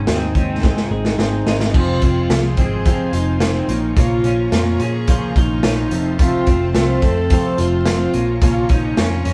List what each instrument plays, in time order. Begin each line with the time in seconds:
Already playing: clean electric guitar G#2 D#4
0.07 picked electric bass D#2, twelve-string acoustic guitar D#3 G#3 C4 D#4, viola C4, clean electric guitar F#4, snare, closed hi-hat
0.21 clean electric guitar G#4
0.35 picked electric bass D#2, twelve-string acoustic guitar G#3 C4 D#4, viola C4, clean electric guitar C#4, kick, closed hi-hat
0.50 clean electric guitar D#4
0.63 twelve-string acoustic guitar G#2 D#3 G#3 C4 D#4, kick, snare
0.77 snare
0.83 viola F4
0.91 picked electric bass G#1, twelve-string acoustic guitar G#3 C4 D#4, viola D#4, clean electric guitar G#4
1.05 snare
1.18 picked electric bass G#1, twelve-string acoustic guitar D#3 G#3 C4 D#4, snare
1.46 picked electric bass G#1, twelve-string acoustic guitar G#3 C4 D#4, snare
1.60 snare
1.74 picked electric bass F1, twelve-string acoustic guitar F2 C3 F3 G#3 C4, viola F4, string machine F4 C5 G#5 C6, kick, crash
2.01 picked electric bass F1, twelve-string acoustic guitar G#3 C4, kick, closed hi-hat
2.30 picked electric bass C2, twelve-string acoustic guitar C3 F3 G#3 C4, viola F4, snare, closed hi-hat
2.57 picked electric bass G#1, twelve-string acoustic guitar F3 G#3 C4, viola G#4, kick, closed hi-hat
2.85 twelve-string acoustic guitar F2 C3 F3 G#3 C4, kick, closed hi-hat
3.13 picked electric bass F1, twelve-string acoustic guitar F3 G#3 C4, viola D#4, clean electric guitar F4, closed hi-hat
3.40 twelve-string acoustic guitar C3 F3 G#3 C4, snare, closed hi-hat
3.68 picked electric bass A#1, clean electric guitar A#2, twelve-string acoustic guitar F3 A#3 C#4, string machine C#5 A#5 C#6, closed hi-hat
3.97 picked electric bass A#1, twelve-string acoustic guitar A#2 F3 A#3 C#4, viola F4, kick, closed hi-hat
4.24 picked electric bass A#1, twelve-string acoustic guitar F3 A#3 C#4, closed hi-hat
4.52 picked electric bass F2, twelve-string acoustic guitar A#2 F3 A#3 C#4, viola F4, snare, closed hi-hat
4.80 picked electric bass A#2, twelve-string acoustic guitar F3 A#3 C#4, viola G#4, closed hi-hat
5.08 twelve-string acoustic guitar A#2 F3 A#3 C#4, kick, closed hi-hat
5.36 picked electric bass A#1, twelve-string acoustic guitar F3 A#3 C#4, viola D#4, clean electric guitar F4, kick, closed hi-hat
5.63 picked electric bass A#1, twelve-string acoustic guitar A#2 F3 A#3 C#4, snare, closed hi-hat
5.91 picked electric bass F1, clean electric guitar F2, twelve-string acoustic guitar F3 A3 C4, string machine C5 A5 C6, closed hi-hat
6.19 twelve-string acoustic guitar F2 C3 F3 A3 C4, viola F4, kick, closed hi-hat
6.46 picked electric bass F1, twelve-string acoustic guitar A3 C4, kick, closed hi-hat
6.75 picked electric bass C2, twelve-string acoustic guitar C3 F3 A3 C4, viola F4, snare, closed hi-hat
7.02 picked electric bass F2, twelve-string acoustic guitar F3 A3 C4, viola A4, kick, closed hi-hat
7.30 twelve-string acoustic guitar F2 C3 F3 A3 C4, kick, closed hi-hat
7.58 picked electric bass F1, twelve-string acoustic guitar F3 A3 C4, clean electric guitar F4, viola F4, closed hi-hat
7.86 twelve-string acoustic guitar C3 F3 A3 C4, snare, closed hi-hat
8.14 picked electric bass A#1, clean electric guitar A#2, twelve-string acoustic guitar F3 A#3 C#4, string machine C#5 A#5 C#6, closed hi-hat
8.42 picked electric bass A#1, twelve-string acoustic guitar A#2 F3 A#3 C#4, viola F4, kick, closed hi-hat
8.69 picked electric bass A#1, twelve-string acoustic guitar F3 A#3 C#4, viola D#4, kick, closed hi-hat
8.96 picked electric bass F2, twelve-string acoustic guitar A#2 F3 A#3 C#4, viola C#4, snare, closed hi-hat
9.25 picked electric bass F2, twelve-string acoustic guitar F3 A#3 C#4, closed hi-hat